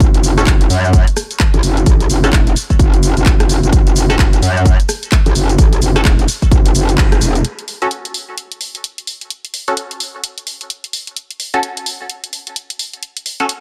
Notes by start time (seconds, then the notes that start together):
0.00 F#1, kick, closed hi-hat, shaker
0.14 closed hi-hat, shaker
0.24 open hi-hat, shaker
0.38 C#4 F#4 A4, cross-stick, closed hi-hat, shaker
0.47 F#1, kick, clap, closed hi-hat, shaker
0.61 closed hi-hat, shaker
0.70 F#2, open hi-hat, shaker
0.84 shaker
0.93 kick, closed hi-hat, shaker
1.07 closed hi-hat, shaker
1.17 cross-stick, open hi-hat, shaker
1.31 closed hi-hat, shaker
1.40 kick, clap, closed hi-hat, shaker
1.54 A1, closed hi-hat, shaker
1.63 F#1, open hi-hat, shaker
1.77 closed hi-hat, shaker
1.86 A1, kick, closed hi-hat, shaker
2.00 closed hi-hat, shaker
2.10 F#1, open hi-hat, shaker
2.24 C#4 F#4 A4, cross-stick, closed hi-hat, shaker
2.33 E1, kick, clap, closed hi-hat, shaker
2.47 closed hi-hat, shaker
2.56 open hi-hat, shaker
2.70 kick, closed hi-hat, shaker
2.79 F#1, kick, closed hi-hat, shaker
2.94 closed hi-hat, shaker
3.03 open hi-hat, shaker
3.17 F#1, closed hi-hat, shaker
3.26 F#1, kick, clap, closed hi-hat, shaker
3.40 cross-stick, closed hi-hat, shaker
3.49 open hi-hat, shaker
3.63 F#1, closed hi-hat, shaker
3.72 F#1, kick, closed hi-hat, shaker
3.87 closed hi-hat, shaker
3.96 open hi-hat, shaker
4.10 C#4 F#4 A4, cross-stick, closed hi-hat, shaker
4.19 F#1, kick, clap, closed hi-hat, shaker
4.33 closed hi-hat, shaker
4.42 F#2, open hi-hat, shaker
4.57 shaker
4.65 kick, closed hi-hat, shaker
4.80 closed hi-hat, shaker
4.89 cross-stick, open hi-hat, shaker
5.03 closed hi-hat, shaker
5.12 kick, clap, closed hi-hat, shaker
5.26 A1, closed hi-hat, shaker
5.35 F#1, open hi-hat, shaker
5.49 closed hi-hat, shaker
5.58 A1, kick, closed hi-hat, shaker
5.73 closed hi-hat, shaker
5.82 F#1, open hi-hat, shaker
5.96 C#4 F#4 A4, cross-stick, closed hi-hat, shaker
6.05 E1, kick, clap, closed hi-hat, shaker
6.19 closed hi-hat, shaker
6.28 open hi-hat, shaker
6.42 kick, closed hi-hat, shaker
6.51 F#1, kick, closed hi-hat, shaker
6.66 closed hi-hat, shaker
6.75 F#1, open hi-hat, shaker
6.89 closed hi-hat, shaker
6.98 F#1, kick, clap, closed hi-hat, shaker
7.12 cross-stick, closed hi-hat, shaker
7.21 E1, open hi-hat, shaker
7.35 closed hi-hat, shaker
7.45 closed hi-hat
7.59 closed hi-hat
7.68 open hi-hat
7.82 C#4 F#4 A4, closed hi-hat
7.91 closed hi-hat
8.05 closed hi-hat
8.14 open hi-hat
8.38 closed hi-hat
8.52 closed hi-hat
8.61 open hi-hat
8.75 closed hi-hat
8.84 closed hi-hat
8.98 closed hi-hat
9.07 open hi-hat
9.21 closed hi-hat
9.30 closed hi-hat
9.45 closed hi-hat
9.54 open hi-hat
9.68 C#4 F#4 A4, closed hi-hat
9.77 closed hi-hat
9.91 closed hi-hat
10.00 open hi-hat
10.24 closed hi-hat
10.38 closed hi-hat
10.47 open hi-hat
10.61 closed hi-hat
10.70 closed hi-hat
10.84 closed hi-hat
10.93 open hi-hat
11.07 closed hi-hat
11.16 closed hi-hat
11.31 closed hi-hat
11.40 open hi-hat
11.54 C#4 F#4 A4, closed hi-hat
11.63 closed hi-hat
11.77 closed hi-hat
11.86 open hi-hat
12.10 closed hi-hat
12.24 closed hi-hat
12.33 open hi-hat
12.47 closed hi-hat
12.56 closed hi-hat
12.70 closed hi-hat
12.79 open hi-hat
12.93 closed hi-hat
13.03 closed hi-hat
13.17 closed hi-hat
13.26 open hi-hat
13.40 C#4 F#4 A4, closed hi-hat
13.49 closed hi-hat